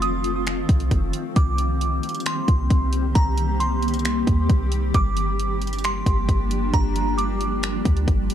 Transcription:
Already playing: 808-style bass F1, ambient pad D#3 F3 A3 C4 F4
0.02 synth bell D#6, closed hi-hat
0.24 closed hi-hat
0.47 finger snap, closed hi-hat
0.69 808-style bass C2, kick, closed hi-hat
0.80 closed hi-hat
0.91 808-style bass F1, kick, closed hi-hat
1.13 closed hi-hat
1.36 808-style bass C2, ambient pad G3 A#3 G4, synth bell D6, kick, closed hi-hat
1.58 closed hi-hat
1.81 closed hi-hat
2.03 closed hi-hat
2.09 closed hi-hat
2.15 closed hi-hat
2.20 closed hi-hat
2.26 synth bell C6, finger snap, closed hi-hat
2.48 808-style bass C2, kick, closed hi-hat
2.70 808-style bass C2, kick, closed hi-hat
2.93 closed hi-hat
3.15 808-style bass C2, synth bell A#5, kick, closed hi-hat
3.38 closed hi-hat
3.60 synth bell C6, closed hi-hat
3.83 closed hi-hat
3.88 closed hi-hat
3.94 closed hi-hat
3.99 closed hi-hat
4.05 finger snap, closed hi-hat
4.27 808-style bass D#2, kick, closed hi-hat
4.49 808-style bass C2, kick, closed hi-hat
4.72 closed hi-hat
4.94 808-style bass G1, ambient pad F3 A#3 D4, synth bell D6, kick, closed hi-hat
5.17 closed hi-hat
5.39 closed hi-hat
5.62 closed hi-hat
5.67 closed hi-hat
5.73 closed hi-hat
5.79 closed hi-hat
5.84 synth bell C6, finger snap, closed hi-hat
6.06 808-style bass G1, kick, closed hi-hat
6.29 808-style bass G1, kick, closed hi-hat
6.51 closed hi-hat
6.74 808-style bass G1, synth bell A#5, kick, closed hi-hat
6.96 closed hi-hat
7.18 synth bell D6, closed hi-hat
7.41 closed hi-hat
7.63 finger snap, closed hi-hat
7.85 808-style bass D2, kick, closed hi-hat
7.97 closed hi-hat
8.08 808-style bass G1, kick, closed hi-hat
8.30 closed hi-hat

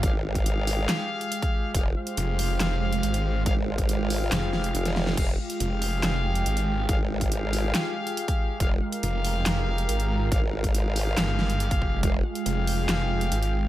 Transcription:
Already playing: analog synth pad G#3 F4 G5
0.03 wobble bass G#1, brass ensemble G4 G#4 F5, kick, closed hi-hat
0.25 brass ensemble G4 G#4 F5
0.35 kick, closed hi-hat
0.46 closed hi-hat
0.67 open hi-hat
0.89 snare, clap, closed hi-hat
1.21 closed hi-hat
1.32 closed hi-hat
1.42 kick, closed hi-hat
1.74 wobble bass F1, brass ensemble G4 G#4 F5, analog synth pad C5, kick, closed hi-hat
1.96 brass ensemble G4 G#4 F5
2.07 closed hi-hat
2.17 detuned saw bass F1, closed hi-hat
2.39 open hi-hat
2.60 detuned saw bass F1, snare, clap, closed hi-hat
2.93 closed hi-hat
3.03 detuned saw bass G#1, closed hi-hat
3.14 closed hi-hat
3.46 wobble bass G#1, brass ensemble G4 G#4 F5, kick, closed hi-hat
3.67 brass ensemble G4 G#4 F5
3.78 kick, closed hi-hat
3.89 closed hi-hat
4.10 open hi-hat
4.32 detuned saw bass F1, snare, clap, closed hi-hat
4.53 snare
4.64 closed hi-hat
4.75 wobble bass F1, closed hi-hat
4.85 snare, closed hi-hat
4.96 snare
5.07 snare
5.17 wobble bass F1, brass ensemble G4 G#4 F5, analog synth pad G5, kick, closed hi-hat, crash
5.39 brass ensemble G4 G#4 F5
5.50 closed hi-hat
5.60 detuned saw bass F1, closed hi-hat
5.82 open hi-hat
6.03 detuned saw bass F1, snare, clap, closed hi-hat
6.35 closed hi-hat
6.46 detuned saw bass G#1, closed hi-hat
6.57 closed hi-hat
6.89 wobble bass G#1, brass ensemble G4 G#4 F5, kick, closed hi-hat
7.10 brass ensemble G4 G#4 F5
7.21 kick, closed hi-hat
7.32 closed hi-hat
7.53 open hi-hat
7.75 snare, clap, closed hi-hat
8.07 closed hi-hat
8.17 closed hi-hat
8.28 kick, closed hi-hat
8.60 wobble bass F1, brass ensemble G4 G#4 F5, analog synth pad A#4, kick, closed hi-hat
8.82 brass ensemble G4 G#4 F5
8.92 closed hi-hat
9.03 detuned saw bass F1, closed hi-hat
9.25 open hi-hat
9.46 detuned saw bass F1, snare, clap, closed hi-hat
9.78 closed hi-hat
9.89 detuned saw bass G#1, closed hi-hat
10.00 closed hi-hat
10.32 wobble bass G#1, brass ensemble G4 G#4 F5, kick, closed hi-hat
10.53 brass ensemble G4 G#4 F5
10.64 kick, closed hi-hat
10.75 closed hi-hat
10.96 open hi-hat
11.17 detuned saw bass G1, snare, clap, closed hi-hat
11.39 snare
11.50 closed hi-hat
11.60 closed hi-hat
11.71 kick, closed hi-hat
11.76 detuned saw bass F#1
11.82 kick
12.03 wobble bass F1, brass ensemble G4 G#4 F5, analog synth pad G5, kick, closed hi-hat
12.25 brass ensemble G4 G#4 F5
12.35 closed hi-hat
12.46 detuned saw bass F1, closed hi-hat
12.67 open hi-hat
12.89 detuned saw bass F1, snare, clap, closed hi-hat
13.21 closed hi-hat
13.32 detuned saw bass G#1, closed hi-hat
13.43 closed hi-hat

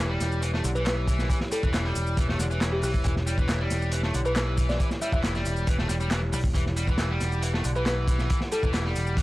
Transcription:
Already playing: picked electric bass E1, analog synth pad E4 G4 C#5
0.09 distorted electric guitar G3
0.20 picked electric bass E1, snare, closed hi-hat, shaker
0.32 shaker
0.42 distorted electric guitar E3, closed hi-hat, shaker
0.54 distorted electric guitar A3, snare
0.64 picked electric bass B1, distorted electric guitar D3, closed hi-hat, shaker
0.75 distorted electric guitar E3, fm electric piano B4, shaker
0.86 fm electric piano B4, snare, clap, closed hi-hat, shaker
1.08 distorted electric guitar E3, kick, closed hi-hat, shaker
1.19 snare, shaker
1.30 distorted electric guitar E3, kick, closed hi-hat, shaker
1.41 snare
1.52 distorted electric guitar G3, fm electric piano A4, closed hi-hat, shaker
1.63 picked electric bass E1, distorted electric guitar E3, kick, shaker
1.74 snare, clap, closed hi-hat, shaker
1.84 distorted electric guitar G3, snare
1.95 picked electric bass E1, closed hi-hat, shaker
2.07 shaker
2.17 distorted electric guitar E3, kick, closed hi-hat, shaker
2.28 distorted electric guitar A3, snare
2.39 picked electric bass E1, distorted electric guitar D3, snare, closed hi-hat, shaker
2.50 distorted electric guitar E3, shaker
2.61 snare, clap, closed hi-hat, shaker
2.73 fm electric piano G4
2.82 picked electric bass B1, distorted electric guitar E3, fm electric piano G4, open hi-hat, shaker
2.94 picked electric bass E1, kick, shaker
3.04 picked electric bass E1, distorted electric guitar E3, kick, closed hi-hat, shaker
3.16 snare
3.27 distorted electric guitar G3, closed hi-hat, shaker
3.38 picked electric bass E1, distorted electric guitar E3, kick, shaker
3.49 snare, clap, closed hi-hat, shaker
3.60 distorted electric guitar G3
3.70 picked electric bass E1, snare, closed hi-hat, shaker
3.82 shaker
3.92 distorted electric guitar E3, closed hi-hat, shaker
4.03 distorted electric guitar A3, snare
4.14 picked electric bass B1, distorted electric guitar D3, closed hi-hat, shaker
4.25 distorted electric guitar E3, fm electric piano B4, shaker
4.36 snare, clap, closed hi-hat, shaker
4.58 distorted electric guitar E3, kick, closed hi-hat, shaker
4.69 fm electric piano D5, snare, shaker
4.80 distorted electric guitar E3, kick, closed hi-hat, shaker
4.91 snare, shaker
5.02 distorted electric guitar G3, fm electric piano E5, closed hi-hat, shaker
5.12 picked electric bass E1, distorted electric guitar E3, fm electric piano E5, kick, shaker
5.24 snare, clap, closed hi-hat, shaker
5.35 distorted electric guitar G3, snare, shaker
5.45 picked electric bass E1, closed hi-hat, shaker
5.57 shaker
5.67 distorted electric guitar E3, kick, closed hi-hat, shaker
5.79 distorted electric guitar A3, snare
5.89 picked electric bass E1, distorted electric guitar G3, snare, closed hi-hat, shaker
6.00 distorted electric guitar G3, shaker
6.11 distorted electric guitar E3, snare, clap, closed hi-hat, shaker
6.32 picked electric bass B1, distorted electric guitar G3, open hi-hat, shaker
6.44 picked electric bass E1, kick, shaker
6.55 picked electric bass E1, distorted electric guitar E3, analog synth pad F#5, kick, closed hi-hat, shaker
6.66 snare
6.76 distorted electric guitar G3, closed hi-hat, shaker
6.88 picked electric bass E1, distorted electric guitar E3, kick, shaker
6.98 snare, clap, closed hi-hat, shaker
7.10 distorted electric guitar G3
7.20 picked electric bass E1, snare, closed hi-hat, shaker
7.32 shaker
7.42 distorted electric guitar E3, closed hi-hat, shaker
7.54 distorted electric guitar A3, snare
7.64 picked electric bass B1, distorted electric guitar D3, closed hi-hat, shaker
7.76 distorted electric guitar E3, fm electric piano B4, shaker
7.86 fm electric piano B4, snare, clap, closed hi-hat, shaker
8.08 distorted electric guitar E3, kick, closed hi-hat, shaker
8.19 snare, shaker
8.30 distorted electric guitar E3, kick, closed hi-hat, shaker
8.41 snare
8.52 distorted electric guitar G3, fm electric piano A4, closed hi-hat, shaker
8.63 picked electric bass E1, distorted electric guitar E3, kick, shaker
8.74 snare, clap, closed hi-hat, shaker
8.85 distorted electric guitar G3, snare
8.96 picked electric bass E1, closed hi-hat, shaker
9.07 shaker
9.17 distorted electric guitar E3, kick, closed hi-hat, shaker

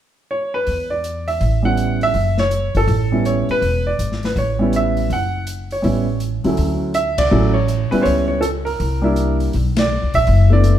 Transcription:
0.31 grand piano C#5
0.54 grand piano B4
0.67 upright bass E2, open hi-hat
0.90 grand piano D5
1.04 closed hi-hat
1.28 grand piano E5, open hi-hat
1.41 upright bass A1, open hi-hat
1.62 grand piano G3 B3 C#4 E4 F#5
1.77 closed hi-hat
2.01 grand piano E5, open hi-hat
2.14 upright bass F#1, open hi-hat
2.38 grand piano C#5, snare
2.51 closed hi-hat
2.75 upright bass G1, grand piano A4, open hi-hat
2.87 upright bass A1, open hi-hat
3.12 grand piano G3 B3 C#4 E4
3.25 grand piano C#5, closed hi-hat
3.49 grand piano B4, muted upright bass stroke, open hi-hat
3.62 upright bass E1, open hi-hat
3.87 grand piano D5
3.99 upright bass G#1, closed hi-hat
4.12 snare
4.23 grand piano B4, snare, open hi-hat
4.36 upright bass A1, grand piano C#5, open hi-hat
4.59 grand piano G3 B3 C#4 E4
4.73 grand piano E5, closed hi-hat
4.97 open hi-hat
5.10 upright bass F#1, grand piano F#5, open hi-hat
5.47 closed hi-hat
5.71 grand piano C#5, open hi-hat
5.82 upright bass A1, grand piano G3 B3 C#4 E4, open hi-hat
6.20 closed hi-hat
6.44 upright bass C#2, grand piano D2 F#3 A3 C#4 E4, open hi-hat
6.57 upright bass D2, open hi-hat
6.94 grand piano E5, closed hi-hat
7.18 grand piano D5, kick, ride
7.31 upright bass A1, grand piano F#3 A3 C#4 E4
7.54 grand piano C#5
7.68 closed hi-hat
7.91 grand piano G3 B3 C#4 E4 B4, muted upright bass stroke, open hi-hat
8.02 upright bass C#2, grand piano C5 C#5, open hi-hat
8.28 grand piano C#5
8.41 grand piano A4, closed hi-hat
8.65 grand piano A#4, open hi-hat
8.80 upright bass C2, open hi-hat
9.02 grand piano G3 A#3 D4 E4
9.16 closed hi-hat
9.40 open hi-hat
9.53 upright bass B1, open hi-hat
9.76 grand piano D5, snare, ride
10.03 upright bass C#2
10.14 upright bass A#1, grand piano E5, kick, open hi-hat
10.27 upright bass F#1, open hi-hat
10.50 grand piano A3 B3 D4 E4 D5
10.64 closed hi-hat

